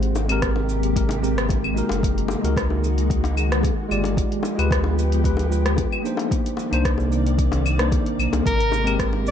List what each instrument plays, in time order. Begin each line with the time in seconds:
Already playing: sub bass G#1, string machine C3 G#3 A#3 G4, tine electric piano G#3 C4 G4 C5
0.03 closed hi-hat
0.15 high bongo, shaker
0.28 tine electric piano G#3 C4 G4 A#4, closed hi-hat, claves, shaker
0.42 kick, cross-stick, closed hi-hat, shaker
0.56 high bongo
0.69 shaker
0.83 closed hi-hat, shaker
0.96 tine electric piano G#3 C4 G4 A#4, kick, closed hi-hat, shaker
1.09 closed hi-hat, high bongo, shaker
1.22 tine electric piano G#3 C4 G4 A#4, shaker
1.38 cross-stick, closed hi-hat, shaker
1.49 kick, closed hi-hat, high bongo, shaker
1.64 claves
1.74 tine electric piano G#3 D#4 F#4, shaker
1.78 tine electric piano A#4
1.89 sub bass F#1, closed hi-hat, high bongo, shaker
2.02 string machine D#3 F#4, kick, closed hi-hat, shaker
2.18 closed hi-hat
2.28 high bongo, shaker
2.41 sub bass C#2, tine electric piano G#3 D#4 F#4 A#4, closed hi-hat, shaker
2.57 kick, cross-stick, closed hi-hat, shaker
2.70 high bongo
2.84 shaker
2.98 closed hi-hat, shaker
3.10 kick, closed hi-hat, shaker
3.24 closed hi-hat, high bongo, shaker
3.37 claves, shaker
3.52 cross-stick, closed hi-hat, shaker
3.63 kick, closed hi-hat, high bongo, shaker
3.89 sub bass G1, tine electric piano G#3 F4 G4 D5, claves, shaker
4.04 closed hi-hat, high bongo, shaker
4.17 string machine F3 B3 G4, kick, closed hi-hat, shaker
4.32 closed hi-hat
4.43 high bongo, shaker
4.55 sub bass D2, tine electric piano G#3 F4 G4 B4, closed hi-hat, claves, shaker
4.71 kick, cross-stick, closed hi-hat, shaker
4.84 high bongo
4.99 shaker
5.12 closed hi-hat, shaker
5.24 tine electric piano G#3 F4 G4 B4, kick, closed hi-hat, shaker
5.37 closed hi-hat, high bongo, shaker
5.50 tine electric piano G#3 F4 G4 B4, shaker
5.66 cross-stick, closed hi-hat, shaker
5.76 kick, closed hi-hat, high bongo, shaker
5.92 claves
6.03 tine electric piano A#3 D4 D#4, shaker
6.07 tine electric piano C5
6.17 closed hi-hat, high bongo, shaker
6.31 string machine C3 D#3 A#3 D5, kick, closed hi-hat, shaker
6.46 closed hi-hat, shaker
6.57 high bongo, shaker
6.71 sub bass C2, tine electric piano A#3 D4 D#4 C5, closed hi-hat, claves, shaker
6.85 kick, cross-stick, closed hi-hat, shaker
6.98 high bongo, shaker
7.12 shaker
7.27 closed hi-hat, shaker
7.38 kick, closed hi-hat, shaker
7.52 closed hi-hat, high bongo, shaker
7.66 claves, shaker
7.78 tine electric piano A#3 D4 D#4 C5, cross-stick, closed hi-hat, shaker
7.92 kick, closed hi-hat, high bongo, shaker
8.06 closed hi-hat
8.19 sub bass A#1, claves, shaker
8.33 sub bass C2, closed hi-hat, high bongo, shaker
8.46 sub bass G#1, string machine C3 G#3 G4, soprano saxophone A#4, kick, closed hi-hat, shaker
8.60 closed hi-hat
8.72 high bongo, shaker
8.84 tine electric piano G#3 C4 G4 A#4, closed hi-hat, claves, shaker
8.99 kick, cross-stick, closed hi-hat, shaker
9.13 high bongo
9.27 shaker